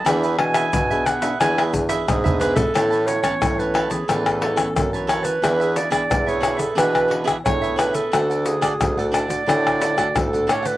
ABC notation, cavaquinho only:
X:1
M:4/4
L:1/16
Q:1/4=89
K:A
V:1 name="Cavaquinho"
[DGBe] [GBe] z [GBe]2 [GBe] [DGBe] [GBe] [DGBe] [GBe] z [GBe]2 [GBe] [DGBe] [GBe] | [ABca] [Bca]2 [ABca] z [Bca] [ABca] [Bca] [ABca]2 [ABca] [ABca] z [Bca] [ABca] [Bca] | [DGBe] [GBe]2 [DGBe] z [GBe] [DGBe] [GBe] [DGBe]2 [DGBe] [DGBe] z [GBe] [DGBe] [GBe] | [DAdf] [Adf]2 [DAdf] z [Adf] [DAdf] [Adf] [DAdf]2 [DAdf] [DAdf] z [Adf] [DAdf] [Adf] |]